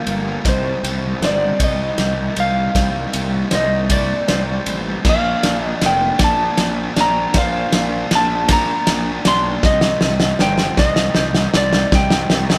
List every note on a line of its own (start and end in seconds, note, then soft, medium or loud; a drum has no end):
0.00 0.43 F3 medium
0.00 1.64 G3 medium
0.00 0.42 A#3 medium
0.00 0.44 F4 medium
0.00 0.46 F4 medium
0.00 1.99 G4 medium
0.00 0.45 A#4 medium
0.00 0.49 D5 medium
0.00 0.14 F5 medium
0.06 0.36 G1 medium
0.06 0.13 G3 soft
0.06 0.14 A#3 medium
0.06 0.46 A#3 medium
0.06 ride medium
0.13 0.21 G3 medium
0.13 0.22 A#3 medium
0.21 0.29 G3 soft
0.21 0.30 A#3 medium
0.30 0.36 G3 soft
0.30 0.38 A#3 medium
0.36 0.44 G3 soft
0.36 0.46 A#3 soft
0.45 0.74 C2 medium
0.45 0.52 C3 medium
0.45 2.37 C3 medium
0.45 5.03 D#3 medium
0.45 0.53 G3 medium
0.45 2.75 C4 medium
0.45 5.03 D#4 medium
0.45 1.25 C5 medium
0.45 1.22 D#5 medium
0.45 kick medium
0.45 snare medium
0.45 ride medium
0.52 0.60 C3 medium
0.52 0.61 G3 soft
0.61 0.68 C3 medium
0.61 0.68 G3 medium
0.68 0.75 C3 soft
0.68 0.75 G3 soft
0.75 0.83 C3 medium
0.75 0.83 G3 medium
0.83 1.13 C2 medium
0.83 0.91 C3 medium
0.83 0.91 G3 medium
0.83 2.37 C4 medium
0.83 ride medium
0.91 0.98 C3 medium
0.91 0.99 G3 medium
0.98 1.06 C3 medium
0.98 1.07 G3 medium
1.06 1.13 C3 medium
1.06 1.14 G3 medium
1.14 1.21 C3 medium
1.14 1.21 G3 medium
1.21 1.51 G1 medium
1.21 1.29 C3 medium
1.21 1.29 G3 medium
1.21 3.14 D#4 medium
1.21 1.99 C5 medium
1.21 snare medium
1.21 ride medium
1.25 1.36 C3 medium
1.25 1.63 D5 medium
1.30 1.37 G3 medium
1.36 1.43 C3 medium
1.36 1.45 G3 medium
1.44 1.51 C3 medium
1.44 1.53 G3 medium
1.52 1.58 C3 medium
1.52 1.60 G3 medium
1.59 1.89 C2 medium
1.59 1.66 C3 medium
1.59 1.67 G3 medium
1.59 kick medium
1.59 ride medium
1.64 1.74 C3 medium
1.64 1.75 G3 medium
1.64 2.35 D#5 medium
1.75 1.82 C3 medium
1.75 1.82 G3 medium
1.83 1.89 C3 medium
1.83 1.90 G3 medium
1.89 1.97 C3 medium
1.89 1.98 G3 medium
1.98 2.27 C2 medium
1.98 2.05 C3 medium
1.98 2.05 G3 medium
1.98 3.91 G4 medium
1.98 snare medium
1.98 ride medium
2.05 2.13 C3 medium
2.05 2.13 G3 medium
2.13 2.19 C3 medium
2.13 2.21 G3 medium
2.20 2.27 C3 soft
2.20 2.29 G3 medium
2.28 2.35 C3 medium
2.28 2.35 G3 medium
2.36 2.66 C2 medium
2.36 2.43 C3 soft
2.36 2.43 G3 medium
2.36 3.13 C4 medium
2.36 ride medium
2.40 2.51 C3 medium
2.40 2.51 G3 medium
2.40 3.50 F5 medium
2.51 2.59 C3 medium
2.51 2.59 G3 soft
2.59 2.66 C3 medium
2.59 2.67 G3 medium
2.66 2.74 C3 soft
2.66 2.75 G3 soft
2.75 3.04 C2 medium
2.75 2.82 C3 medium
2.75 4.67 C3 medium
2.75 2.83 G3 medium
2.75 5.04 A#3 medium
2.75 3.52 D5 medium
2.75 kick medium
2.75 snare medium
2.75 ride medium
2.82 2.90 C3 soft
2.82 2.90 G3 soft
2.91 2.97 C3 medium
2.91 2.98 G3 medium
2.98 3.05 C3 soft
2.98 3.06 G3 soft
3.06 3.13 C3 medium
3.06 3.14 G3 medium
3.13 3.43 C2 medium
3.13 3.21 C3 medium
3.13 3.22 G3 medium
3.13 4.66 C4 medium
3.13 ride medium
3.22 3.28 C3 medium
3.22 3.29 G3 medium
3.28 3.35 C3 soft
3.28 3.36 G3 medium
3.36 3.43 C3 medium
3.36 3.44 G3 medium
3.44 3.52 C3 medium
3.44 3.53 G3 medium
3.51 4.11 C2 medium
3.51 3.59 C3 medium
3.51 3.59 G3 medium
3.51 5.06 D#4 medium
3.51 4.26 C5 medium
3.51 snare medium
3.51 ride medium
3.55 3.92 D#5 medium
3.59 3.67 C3 medium
3.59 3.67 G3 medium
3.67 3.75 C3 medium
3.67 3.74 G3 medium
3.75 3.82 C3 soft
3.75 3.82 G3 medium
3.82 3.90 C3 medium
3.82 3.91 G3 medium
3.90 3.97 C3 medium
3.90 3.98 G3 medium
3.90 6.20 D5 medium
3.90 4.74 D5 medium
3.90 kick medium
3.90 ride medium
3.98 4.05 C3 medium
3.98 4.05 G3 medium
4.05 4.12 C3 medium
4.05 4.13 G3 medium
4.13 4.21 C3 medium
4.13 4.20 G3 medium
4.21 4.28 C3 medium
4.21 4.28 G3 medium
4.28 4.58 C2 medium
4.28 4.36 C3 medium
4.28 4.36 G3 medium
4.28 5.06 G4 medium
4.28 5.05 C5 medium
4.28 snare medium
4.28 ride medium
4.37 4.43 C3 medium
4.37 4.43 G3 medium
4.44 4.50 C3 medium
4.44 4.51 G3 medium
4.51 4.58 C3 medium
4.51 4.59 G3 medium
4.59 4.66 C3 medium
4.59 4.67 G3 medium
4.66 4.96 A1 medium
4.66 4.74 C3 medium
4.66 4.74 G3 soft
4.66 5.06 C4 medium
4.66 ride medium
4.75 4.82 C3 medium
4.75 4.82 G3 medium
4.82 4.89 C3 soft
4.82 4.89 G3 medium
4.89 4.97 C3 medium
4.89 4.98 G3 medium
4.98 5.07 C3 soft
4.98 5.05 G3 soft
5.04 5.34 A#1 medium
5.04 9.62 A#2 medium
5.04 6.97 A#3 medium
5.04 5.13 A#3 medium
5.04 5.13 D4 medium
5.04 9.62 D4 medium
5.04 5.82 D5 medium
5.04 kick medium
5.04 snare medium
5.04 crash medium
5.09 5.65 F5 loud
5.13 5.20 A#3 medium
5.13 5.21 D4 medium
5.20 5.28 A#3 medium
5.20 5.30 D4 medium
5.29 5.36 A#3 medium
5.29 5.37 D4 medium
5.36 5.44 A#3 medium
5.36 5.45 D4 medium
5.43 5.73 A#1 medium
5.43 5.52 A#3 medium
5.43 6.96 D4 medium
5.43 5.52 D4 medium
5.43 snare medium
5.43 ride medium
5.53 5.59 A#3 medium
5.53 5.60 D4 medium
5.59 5.67 A#3 medium
5.59 5.67 D4 medium
5.65 5.74 A#3 medium
5.65 5.75 D4 medium
5.65 5.86 D#5 loud
5.75 5.82 A#3 medium
5.75 5.83 D4 medium
5.81 6.11 F1 medium
5.81 5.90 A#3 medium
5.81 5.90 D4 medium
5.81 7.74 F4 medium
5.81 6.59 A#4 medium
5.81 snare medium
5.81 ride medium
5.86 5.98 D4 medium
5.86 6.24 G5 medium
5.90 5.98 A#3 medium
5.99 6.04 A#3 medium
5.99 6.06 D4 medium
6.04 6.12 A#3 medium
6.04 6.13 D4 medium
6.14 6.21 A#3 medium
6.14 6.20 D4 medium
6.19 6.49 A#1 medium
6.19 6.28 A#3 medium
6.19 6.28 D4 medium
6.19 8.50 D5 medium
6.19 kick medium
6.19 snare medium
6.19 ride medium
6.24 6.35 A#3 medium
6.24 7.00 A5 medium
6.29 6.37 D4 medium
6.35 6.43 A#3 medium
6.35 6.44 D4 medium
6.44 6.51 A#3 medium
6.44 6.51 D4 medium
6.52 6.59 A#3 medium
6.52 6.59 D4 medium
6.58 6.88 A#1 medium
6.58 6.66 A#3 medium
6.58 6.67 D4 medium
6.58 7.35 D5 medium
6.58 snare medium
6.58 ride medium
6.66 6.73 A#3 medium
6.66 6.73 D4 medium
6.74 6.81 A#3 medium
6.74 6.81 D4 medium
6.81 6.89 A#3 medium
6.81 6.90 D4 medium
6.90 6.97 A#3 medium
6.90 6.97 D4 medium
6.96 7.26 A#1 medium
6.96 7.04 A#3 medium
6.96 7.73 D4 medium
6.96 7.04 D4 medium
6.96 snare medium
6.96 ride medium
7.01 7.12 A#3 medium
7.01 7.38 A#5 loud
7.05 7.11 D4 medium
7.12 7.19 A#3 medium
7.12 7.19 D4 medium
7.20 7.27 A#3 medium
7.20 7.27 D4 medium
7.27 7.36 A#3 medium
7.27 7.35 D4 soft
7.34 7.64 A#1 medium
7.34 9.27 A#3 medium
7.34 7.44 A#3 medium
7.34 7.44 D4 medium
7.34 8.12 C5 medium
7.34 kick medium
7.34 snare medium
7.34 ride medium
7.38 8.09 F5 loud
7.44 7.50 A#3 soft
7.44 7.52 D4 medium
7.51 7.58 A#3 medium
7.51 7.60 D4 medium
7.60 7.67 A#3 medium
7.60 7.68 D4 medium
7.68 7.73 A#3 medium
7.68 7.73 D4 medium
7.72 8.03 A#1 medium
7.72 7.81 A#3 medium
7.72 7.81 D4 medium
7.72 9.25 D4 medium
7.72 snare loud
7.72 ride medium
7.81 7.89 A#3 medium
7.81 7.89 D4 medium
7.90 7.96 A#3 soft
7.90 7.97 D4 medium
7.97 8.05 A#3 medium
7.97 8.05 D4 medium
8.05 8.12 A#3 medium
8.05 8.12 D4 medium
8.11 8.70 A#1 medium
8.11 8.20 A#3 medium
8.11 8.20 D4 medium
8.11 9.65 F4 medium
8.11 snare medium
8.11 ride medium
8.15 8.52 A5 loud
8.21 8.28 A#3 medium
8.21 8.28 D4 medium
8.28 8.36 A#3 medium
8.28 8.36 D4 medium
8.36 8.43 A#3 medium
8.36 8.43 D4 medium
8.43 8.51 A#3 medium
8.43 8.50 D4 medium
8.49 8.58 A#3 medium
8.49 8.58 D4 medium
8.49 9.66 D5 medium
8.49 kick medium
8.49 snare medium
8.49 ride medium
8.53 9.27 A#5 medium
8.58 8.65 A#3 medium
8.58 8.66 D4 medium
8.65 8.73 A#3 medium
8.65 8.72 D4 medium
8.73 8.80 A#3 medium
8.73 8.81 D4 medium
8.80 8.88 A#3 medium
8.80 8.89 D4 medium
8.87 9.17 A#1 medium
8.87 8.97 A#3 medium
8.87 8.97 D4 medium
8.87 snare medium
8.87 ride medium
8.97 9.03 A#3 medium
8.97 9.03 D4 medium
9.04 9.11 A#3 medium
9.04 9.12 D4 medium
9.12 9.19 A#3 soft
9.12 9.20 D4 medium
9.19 9.27 A#3 medium
9.19 9.27 D4 medium
9.25 9.55 B1 medium
9.25 9.33 A#3 soft
9.25 9.66 D4 medium
9.25 9.34 D4 medium
9.25 9.63 C6 loud
9.25 snare medium
9.25 ride medium
9.34 9.41 A#3 medium
9.34 9.42 D4 medium
9.42 9.49 A#3 soft
9.42 9.50 D4 medium
9.50 9.57 A#3 medium
9.50 9.57 D4 medium
9.58 9.65 A#3 soft
9.58 9.65 D4 medium
9.63 9.93 C2 medium
9.63 11.55 C3 medium
9.63 9.72 C3 medium
9.63 12.58 D#3 medium
9.63 9.73 G3 medium
9.63 12.58 C4 medium
9.63 12.58 D#4 medium
9.63 10.40 D#5 medium
9.63 10.38 D#5 loud
9.63 kick medium
9.63 snare medium
9.73 9.80 C3 medium
9.73 9.79 G3 medium
9.79 9.88 C3 medium
9.79 9.87 G3 medium
9.79 snare loud
9.88 9.96 C3 medium
9.88 9.95 G3 medium
9.95 10.03 C3 medium
9.95 10.03 G3 medium
10.01 10.32 C2 medium
10.01 10.11 C3 medium
10.01 10.10 G3 medium
10.01 11.53 C4 medium
10.01 snare loud
10.10 10.17 C3 medium
10.10 10.18 G3 medium
10.17 10.25 C3 medium
10.17 10.26 G3 medium
10.17 snare loud
10.25 10.33 C3 medium
10.25 10.34 G3 medium
10.34 10.41 C3 medium
10.34 10.41 G3 medium
10.39 10.70 G1 medium
10.39 10.47 C3 medium
10.39 10.49 G3 medium
10.39 12.31 D#4 medium
10.39 11.17 C5 medium
10.39 10.77 G5 loud
10.39 snare medium
10.48 10.55 C3 medium
10.48 10.56 G3 medium
10.56 10.63 C3 medium
10.56 10.64 G3 medium
10.56 snare medium
10.64 10.71 C3 medium
10.64 10.72 G3 medium
10.71 10.79 C3 medium
10.71 10.79 G3 medium
10.77 11.07 C2 loud
10.77 10.85 C3 medium
10.77 10.87 G3 medium
10.77 11.57 D#5 medium
10.77 kick medium
10.77 snare loud
10.85 10.93 C3 medium
10.85 10.95 G3 medium
10.94 11.01 C3 medium
10.94 11.03 G3 medium
10.94 snare medium
11.01 11.09 C3 medium
11.01 11.10 G3 medium
11.10 11.16 C3 medium
11.10 11.18 G3 medium
11.15 11.46 C2 medium
11.15 11.24 C3 medium
11.15 11.25 G3 medium
11.15 12.58 G4 medium
11.15 snare loud
11.24 11.32 C3 medium
11.24 11.33 G3 medium
11.32 11.39 C3 medium
11.32 11.40 G3 medium
11.32 snare loud
11.39 11.46 C3 medium
11.39 11.48 G3 medium
11.47 11.54 C3 medium
11.47 11.56 G3 medium
11.54 11.84 C2 loud
11.54 11.62 C3 medium
11.54 11.63 G3 medium
11.54 12.29 C4 medium
11.54 11.96 D5 loud
11.54 snare loud
11.63 11.70 C3 medium
11.63 11.70 G3 medium
11.70 11.76 C3 soft
11.70 11.78 G3 medium
11.70 snare loud
11.76 11.84 C3 medium
11.76 11.86 G3 medium
11.86 11.93 C3 medium
11.86 11.94 G3 medium
11.92 12.22 C2 loud
11.92 12.58 C3 medium
11.92 12.01 C3 medium
11.92 12.01 G3 medium
11.92 12.58 D5 medium
11.92 12.58 G5 loud
11.92 kick medium
11.92 snare loud
12.02 12.08 C3 medium
12.02 12.09 G3 medium
12.09 12.16 C3 medium
12.09 12.17 G3 medium
12.09 snare loud
12.16 12.24 C3 medium
12.16 12.25 G3 medium
12.24 12.32 C3 medium
12.24 12.32 G3 medium
12.30 12.58 C2 medium
12.30 12.39 C3 medium
12.30 12.40 G3 medium
12.30 12.58 C4 medium
12.30 snare loud
12.39 12.46 C3 medium
12.39 12.47 G3 medium
12.47 12.55 C3 medium
12.47 12.55 G3 medium
12.47 snare loud